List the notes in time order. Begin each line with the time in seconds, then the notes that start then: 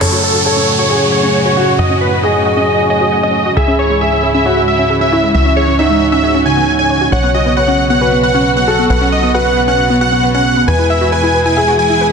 0.01 F#2 A2 C#3 F#3 C#4 F#4 A4 C#5, crash, downlifter
0.12 F#4
0.23 A4 C#5
0.34 F#4
0.46 A4 C#5 F#5
0.57 C#4
0.79 F#4 C#5
0.90 G#4 C#5
1.01 F#4
1.12 C#5 F#5
1.23 C#4
1.46 F#4 C#5
1.57 F#4 C#5
1.68 F#4
1.79 F#2 D#5 F#5
1.90 C#4
2.01 B4
2.12 F#4
2.23 G#4 C#5 D#5
2.34 F#4
2.46 F#5
2.57 C#4 D#5
2.79 F#4
2.90 C#5 D#5
3.01 F#4
3.12 F#5
3.23 C#4 D#5
3.46 F#4
3.57 C#2 G#2 C#3 E3 C#4 E4 G#4 E5
3.68 C#4
3.79 C#5
3.90 G#3
4.01 G#4 E5
4.12 C#4
4.23 G#4
4.34 C#4 E5
4.46 F#4 C#5
4.57 G#3
4.68 E5
4.79 C#4
4.90 G#4
5.01 C#4 E5
5.12 E4 C#5
5.23 G#3
5.34 C#2 F#4 E5
5.45 C#4
5.57 G#4 C#5
5.68 C#4
5.79 D#4 C#5 E5
5.90 G#3
6.12 C#4 E5
6.23 G#4
6.34 C#4
6.46 C#3 G#5
6.57 B3
6.79 C#5 G#5
6.90 C#5
7.01 F#4
7.12 B1 B2 F#3 F#4 C#5 F#5
7.23 B3
7.34 F#4 D#5
7.46 B3
7.57 B4 C#5 F#5
7.68 C#4
7.90 B3 F#5
8.01 F#4 B4
8.12 B3
8.23 B4 F#5
8.34 C#4
8.57 B3 F#5
8.68 F#4 A4
8.79 B3
8.90 B1 B3 B4 F#5
9.01 C#4
9.12 D#5
9.23 B3
9.34 F#4 B4 F#5
9.46 B3
9.57 B4
9.68 C#4 F#5
9.90 B3
10.01 F#4 F#5
10.12 B3
10.23 B4
10.34 C#4 F#5
10.57 B3
10.68 E2 E3 G#3 E4 G#4 B4 G#5
10.79 E4
10.90 E5
11.01 F#4
11.12 B4 G#5
11.23 E4
11.34 B4
11.46 E4 G#5
11.57 G#4 E5
11.68 F#4
11.79 G#5
11.90 E4
12.01 B4